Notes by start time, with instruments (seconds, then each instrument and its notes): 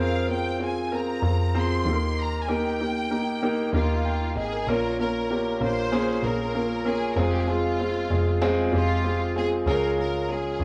Already playing: picked electric bass F2, grand piano C4 F4 G#4 A#4 C5
0.00 violin section F5
0.29 grand piano C4 F4 G#4 C5, violin section G5
0.59 grand piano C4 F4 G#4 C5
0.65 violin section G#5
0.91 grand piano C4 F4 G#4 A#4, violin section A#5
1.22 picked electric bass F2, grand piano C4 F4 G#4 A#4
1.55 grand piano C4 F4 G#4 C5, violin section C6
1.85 picked electric bass D#2, grand piano D#3 A#3 D#4 G4 A4
1.93 grand piano A#4
2.20 violin section A#5
2.43 violin section G#5
2.48 grand piano A#3 D#4 G4 A#4, violin section G5
2.81 grand piano A#3 D#4 G4 A#4
3.11 grand piano A#3 D#4 G4 A#4
3.42 grand piano A#3 D#4 G4 A#4
3.73 picked electric bass D#2, grand piano A#3 D#4 G4 A#4, violin section F4
4.05 grand piano G5
4.36 picked electric bass G#1, violin section G#4, grand piano D#5
4.52 grand piano A#4
4.67 picked electric bass A#1, grand piano A#2 A#3 C#4 F4 A#4, violin section A#4
4.99 grand piano A#3 C#4 F4 A#4, violin section A#4
5.30 grand piano A#3 C#4 F4 G4
5.61 picked electric bass A#1, grand piano A#3 C#4 F4 A#4, violin section C5
5.92 grand piano A#3 C#4 F4 G#4
6.22 picked electric bass A#1, grand piano A#3 C#4 F4 G#4, violin section A#4
6.55 grand piano A#3 C#4 F4 A#4
6.85 grand piano A#3 C#4 F4 A#4, violin section G#4
7.13 picked electric bass F1, grand piano G#3 C4 F4 G#4, violin section A#4
7.21 violin section G#4
7.31 violin section G4
7.40 violin section G#4
7.47 grand piano G#3 C4 F4 G#4, violin section F4
7.79 grand piano G#3 C4 F4 G#4
8.10 picked electric bass F1, grand piano G#3 C4 F4 G#4
8.42 grand piano G#3 C4 F4 G#4
8.72 picked electric bass F1, grand piano G#3 C4 F4 G4, violin section F4
9.04 grand piano G#3 C4 F4 G#4
9.36 grand piano G#3 C4 F4 G#4, violin section G#4
9.66 picked electric bass C#2, grand piano C#3 G#3 C#4 F4 G#4, violin section A#4
9.98 grand piano G#3 C#4 F4 G#4, violin section A#4
10.29 grand piano G#3 C#4 F4 G#4, violin section G#4
10.59 picked electric bass C#2, grand piano G#3 C#4 F4 G#4